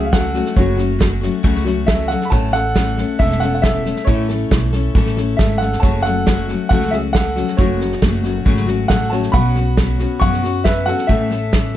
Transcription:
Already playing: C#2 F#3 A3 C#4 F#4
0.05 F5
0.12 F#3 A3 C#4 F#4 A4 F#5, kick, snare, hi-hat pedal
0.34 F#3 A3 C#4 F#4, snare
0.46 snare
0.56 F#1 F#2 C#3 F#3 A3 C#4 F#4 C#5, kick, snare
0.77 F#3 A3 C#4 F#4, snare
0.99 F#3 A3 C#4 F#4, kick, snare, hi-hat pedal
1.21 F#3 A3 C#4 F#4, snare
1.43 C#2 F#2 C#3 F#3 A3 C#4 F#4, kick, snare
1.55 snare
1.64 F#3 A3 C#4 F#4, snare
1.86 F#3 A3 C#4 F#4 A4 E5, kick, snare, hi-hat pedal
2.08 F#3 A3 C#4 F#4 A4 F#5, snare
2.21 snare
2.25 B5
2.30 A1 A2 E3 A3 C#4 A4 C#5 A5, kick, snare
2.52 A3 C#4 A4 F#5, snare
2.75 E3 A3 C#4 A4, kick, snare, hi-hat pedal
2.97 A3 C#4 A4, snare
3.19 E1 A2 E3 A3 C#4 A4 E5, kick, snare
3.31 snare
3.40 C#4 A4 F#5, snare
3.44 A3
3.55 F#5
3.62 E3 A3 C#4 A4 E5, kick, snare, hi-hat pedal
3.66 A4
3.84 A3 C#4 A4, snare
3.96 snare
4.05 A1 A2 E3 A3 C#4 E4 C#5, kick, snare
4.09 A4
4.29 A3 C#4 A4, snare
4.51 B1 E3 A3 C#4 A4, kick, snare, hi-hat pedal
4.73 A3 C#4 A4, snare
4.95 A1 A2 E3 A3 C#4 A4, kick, snare
5.06 snare
5.17 A3 C#4 A4, snare
5.37 G#1 E3 A3 C#4 A4 E5, kick, snare, hi-hat pedal
5.42 A4
5.58 A4 F#5, snare
5.62 A3 C#4
5.72 snare
5.80 F#1 F#2 C#3 F#3 C#5 A5, kick, snare
5.85 A3 C#4 F#4
6.03 C#4 F#4 A4 F#5, snare
6.07 F#3 A3
6.26 F#3 A3 C#4 F#4, kick, snare, hi-hat pedal
6.48 F#3 A3 C#4 F#4, snare
6.69 C#2 F#2 C#3 F#3 A3 C#4 F#4 A4 F#5, kick, snare
6.82 snare
6.91 C#4 F#4 G#4 E5, snare
6.95 F#3 A3
7.13 F#3 A3 C#4 A4 F#5, kick, snare, hi-hat pedal
7.17 F#4
7.36 F#3 A3 C#4 F#4, snare
7.48 snare
7.57 F#1 F#2 C#3 F#3 A3 C#4 F#4 C#5, kick, snare
7.79 F#3 A3 C#4 F#4, snare
7.92 snare
8.01 F#1 F#3 A3 C#4 F#4, kick, snare, hi-hat pedal
8.23 F#3 A3 C#4 F#4, snare
8.45 G#1 F#2 C#3 F#3 A3 C#4 F#4, kick, snare
8.57 snare
8.67 F#3 A3 C#4 F#4, snare
8.88 A1 F#3 A3 C#4 F#4 A4 F#5, kick, snare, hi-hat pedal
9.10 C#4 F#4 C#5 A5, snare
9.14 F#3 A3
9.23 snare
9.32 B1 B2 F#3 B3 C#4 F#4 F#5 B5, kick, snare
9.56 B3 C#4 F#4, snare
9.77 F#3 B3 C#4 F#4, kick, snare, hi-hat pedal
9.99 B3 C#4 F#4, snare
10.20 F#2 B2 F#3 B3 C#4 F#4 F#5 C#6, kick, snare
10.33 snare
10.43 B3 C#4 F#4, snare
10.64 F#3 B3 C#4 F#4 B4 E5, kick, snare, hi-hat pedal
10.86 C#4 F#4 A4 F#5, snare
10.90 B3
10.98 snare
11.07 A1 A2 E3 A3 C#4 A4 E5, kick, snare
11.31 A3 C#4 A4, snare
11.52 E3 A3 C#4 A4, kick, snare, hi-hat pedal

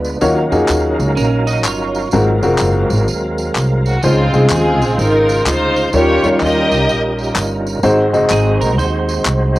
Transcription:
Already playing: D2 G#3 B3 D4 F4 B4
0.04 tambourine
0.21 D#2 D#3 F#3 A#3 C#4 D#4 F4 F#4 A#4 C#5 F5, tambourine
0.52 F2 A#3 D#4 F4 F#4 G#4, tambourine
0.68 D#2, clap, tambourine
0.99 C#2, tambourine
1.17 A#1 C#4 A#4, tambourine
1.47 F#4 D#5, tambourine
1.64 G1 F4 C#5, clap, tambourine
1.95 tambourine
2.11 G#1 G#2 F#3 G#3 C4 F4 F#4 A#4 F5, tambourine
2.43 F1 G#3 C4 F4 F#4 A#4, tambourine
2.58 F#1, clap, tambourine
2.90 G#1, tambourine
3.08 D#2, tambourine
3.38 tambourine
3.55 C2, clap, tambourine
3.86 F#4, tambourine
4.03 C#2 C#3 G#3 C4 C#4 D#4 F4 A#4 C5, tambourine
4.09 C5
4.33 C2 G#3 C4 D#4 F4 G#4, tambourine
4.49 D#2 C4 F4 G#4, clap, tambourine
4.81 A#1, tambourine
4.98 G#1 D#4 F4 A#4, tambourine
5.29 tambourine
5.46 D2 D#4 F4 C5, clap, tambourine
5.76 tambourine
5.93 D#2 D#3 G3 C#4 D#4 F4 G4 A4 A#4 C#5, tambourine
6.00 A#4
6.23 F2 G3 C#4 D#4 F4 A#4, tambourine
6.40 D#2 G4 A#4 D#5, clap, tambourine
6.71 C2, tambourine
6.88 A#1, tambourine
7.18 tambourine
7.35 G1, clap, tambourine
7.67 tambourine
7.83 G#1 G#2 G#3 C4 D#4 F#4 C5, tambourine
8.13 F#1 G#3 C4 D#4 F#4 D#5, tambourine
8.30 G#1 C4 G#4, clap, tambourine
8.61 A#1 A#4, tambourine
8.78 D#2 D#4 C5, tambourine
9.09 tambourine
9.25 C2, clap, tambourine
9.56 tambourine

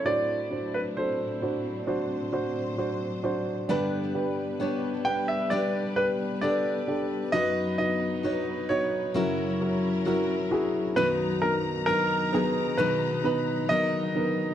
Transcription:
Already playing: E4
0.05 A2 F#3 A3 C4 D4 F#4 C5 D5
0.50 D4 F#4 C5
0.74 B4
0.97 D4 F#4 A4 C5
1.42 D4 F#4 C5
1.87 D4 F#4 C5
2.32 D4 F#4 C5
2.78 D4 F#4 C5
3.23 D4 F#4 C5
3.69 G2 D3 G3 B3 D4 G4 B4
4.14 D4 G4 B4
4.59 B3 D4 G4 B4 C#5
5.05 D4 G4 B4 G5
5.28 E5
5.50 G3 B3 D4 G4 B4 D5
5.96 D4 G4 B4
6.41 B3 D4 G4 A4 B4 D5
6.87 D4 G4 A4
7.32 F#2 F#3 B3 D#4 F#4 B4 D#5
7.78 D#4 F#4 B4 D#5
8.23 F#3 B3 D#4 F#4 B4 C#5
8.69 B3 D#4 F#4 B4 C#5
9.14 F#2 C#3 F#3 C#4 E4 F#4 A#4
9.60 E4 F#4 A#4
10.05 F#3 C#4 E4 F#4 A#4
10.51 E4 F#4 G#4
10.96 B1 F#2 B2 D#3 F#3 B3 D#4 B4 A#5
11.42 B3 D#4 A#4
11.86 F#3 B3 D#4 A#4
11.90 A#4
12.33 F#3 B3 D#4 G#4 A#4
12.78 B2 D#3 F#3 B3 D#4 B4
13.24 B3 D#4 B4
13.69 F#3 B3 D#4 A#4 D#5
14.14 B3 D#4 A#4

